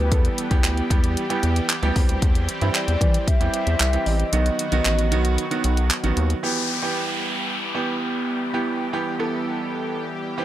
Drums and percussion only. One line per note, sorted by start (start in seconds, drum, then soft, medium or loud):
0.12 kick loud
0.12 closed hi-hat medium
0.25 closed hi-hat medium
0.38 closed hi-hat medium
0.51 kick loud
0.51 closed hi-hat medium
0.64 clap loud
0.64 closed hi-hat medium
0.77 closed hi-hat medium
0.90 kick loud
0.90 closed hi-hat medium
1.04 closed hi-hat medium
1.17 closed hi-hat medium
1.30 closed hi-hat medium
1.43 closed hi-hat medium
1.56 closed hi-hat medium
1.69 clap loud
1.69 closed hi-hat medium
1.83 closed hi-hat soft
1.96 kick medium
1.96 open hi-hat medium
2.09 closed hi-hat medium
2.22 kick loud
2.22 closed hi-hat loud
2.35 closed hi-hat medium
2.49 closed hi-hat medium
2.61 closed hi-hat medium
2.75 clap loud
2.75 closed hi-hat medium
2.88 closed hi-hat medium
3.01 kick loud
3.01 closed hi-hat medium
3.14 closed hi-hat medium
3.28 kick medium
3.28 closed hi-hat medium
3.41 closed hi-hat medium
3.54 closed hi-hat medium
3.67 closed hi-hat medium
3.80 clap loud
3.80 closed hi-hat medium
3.93 closed hi-hat soft
4.06 open hi-hat medium
4.20 closed hi-hat medium
4.33 closed hi-hat medium
4.46 closed hi-hat medium
4.59 closed hi-hat medium
4.72 closed hi-hat medium
4.85 clap loud
4.85 closed hi-hat medium
4.99 closed hi-hat medium
5.12 closed hi-hat medium
5.25 closed hi-hat medium
5.38 closed hi-hat medium
5.51 closed hi-hat medium
5.64 closed hi-hat medium
5.77 closed hi-hat medium
5.90 clap loud
5.90 closed hi-hat medium
6.04 closed hi-hat soft
6.17 closed hi-hat medium
6.30 closed hi-hat medium